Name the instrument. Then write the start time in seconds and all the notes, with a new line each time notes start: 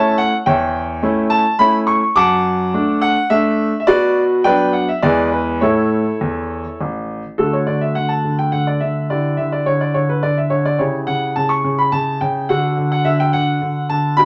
grand piano
Already playing: A3 C#4 E4 C#5 E5 A5
0.18 F#5
0.46 E2 C#5 E5 G5
1.03 A3 C#4 E4
1.30 A5
1.59 A3 C#4 E4 B5
1.87 C#6
2.16 F#2 F#5 A5 D6
2.74 A3 D4
3.02 F#5
3.30 A3 D4 E5
3.80 E5
3.87 B2 F#4 B4 D5
4.44 F#3 B3 D4 B4 D5 G5
4.73 F#5
4.89 E5
5.02 E2 G#3 B3 E4 G#4 B4 D5
5.32 B4
5.61 A2 A3 E4 A4 C#5
6.21 E2
6.81 A1
7.38 D3 A3 F#4 A4
7.53 C#5
7.67 D3 D5
7.81 E5
7.95 D3 F#5
8.09 A5
8.25 D3
8.39 G5
8.52 D3 F#5
8.67 D5
8.80 D3 E5
9.10 D3 E4 G4 D5
9.37 D3 E5
9.52 D5
9.66 D3 C#5
9.81 D5
9.94 D3 C#5
10.09 B4
10.23 D3 D5
10.38 E5
10.50 D3 C#5
10.65 D5
10.79 C#3 E4 G4 C#5
11.07 C#3 F#5
11.36 C#3 A5
11.49 C#6
11.64 C#3
11.78 B5
11.92 C#3 A5
12.21 C#3 G5
12.49 D3 D4 F#4 F#5
12.78 D3
12.92 F#5
13.05 D3 E5
13.20 G5
13.33 D3 F#5
13.62 D3
13.89 D3 A5
14.17 B2 D4 G4 B5